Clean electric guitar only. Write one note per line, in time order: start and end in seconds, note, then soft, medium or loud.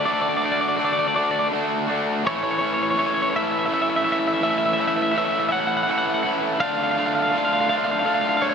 0.05 0.13 D5 medium
0.14 0.21 D5 medium
0.22 0.29 D5 medium
0.29 0.36 D5 medium
0.37 0.45 D5 medium
0.45 0.51 D5 medium
0.52 0.60 D5 medium
0.61 0.68 D5 medium
0.68 0.76 D5 medium
0.77 0.84 D5 medium
0.85 0.92 D5 medium
0.93 0.99 D5 medium
0.99 1.07 D5 medium
1.08 1.15 D5 medium
1.16 1.23 D5 medium
1.24 1.31 D5 medium
1.31 1.39 D5 medium
1.39 1.47 D5 medium
2.27 2.35 C#5 loud
2.36 2.43 C#5 medium
2.43 2.50 C#5 medium
2.51 2.58 C#5 medium
2.58 2.66 C#5 medium
2.67 2.73 C#5 medium
2.74 2.82 C#5 loud
2.83 2.90 C#5 medium
2.91 2.99 C#5 medium
2.99 3.06 C#5 medium
3.06 3.14 C#5 medium
3.14 3.22 C#5 medium
3.22 3.30 C#5 medium
3.30 3.36 C#5 medium
3.36 3.43 E5 loud
3.51 3.58 E5 loud
3.59 3.65 E5 medium
3.66 3.73 E5 loud
3.74 3.81 E5 medium
3.82 3.89 E5 loud
3.90 3.96 E5 medium
3.96 4.04 E5 loud
4.04 4.12 E5 medium
4.12 4.19 E5 loud
4.19 4.27 E5 medium
4.27 4.33 E5 medium
4.34 4.41 E5 medium
4.43 4.50 E5 loud
4.50 4.58 E5 medium
4.58 4.65 E5 loud
4.66 4.73 E5 medium
4.73 4.80 E5 loud
4.80 4.87 E5 medium
4.88 4.95 E5 loud
4.96 5.02 E5 medium
5.02 5.10 E5 loud
5.11 5.17 E5 medium
5.18 5.25 E5 loud
5.25 5.32 E5 medium
5.32 5.39 E5 medium
5.39 5.47 E5 medium
5.49 5.52 E5 medium
5.49 5.60 F#5 loud
5.60 5.67 F#5 medium
5.67 5.75 F#5 loud
5.77 5.83 F#5 medium
5.83 5.90 F#5 loud
5.91 5.97 F#5 loud
5.98 6.06 F#5 loud
6.07 6.14 F#5 medium
6.14 6.22 F#5 loud
6.23 6.30 F#5 medium
6.60 6.67 F5 loud
6.68 6.75 F5 medium
6.76 6.83 F5 loud
6.83 6.91 F5 medium
6.91 6.98 F5 loud
6.99 7.06 F5 loud
7.06 7.14 F5 loud
7.15 7.22 F5 loud
7.22 7.29 F5 loud
7.30 7.37 F5 medium
7.38 7.45 F5 loud
7.45 7.53 F5 medium
7.53 7.60 F5 medium
7.60 7.68 F5 medium
7.69 7.77 F5 loud
7.77 7.84 F5 medium
7.84 7.91 F5 medium
7.91 7.99 F5 medium
7.99 8.06 F5 medium
8.06 8.14 F5 medium
8.14 8.21 F5 medium
8.21 8.29 F5 medium
8.29 8.37 F5 medium
8.37 8.44 F5 medium
8.42 8.49 C#5 medium
8.49 8.54 C#5 medium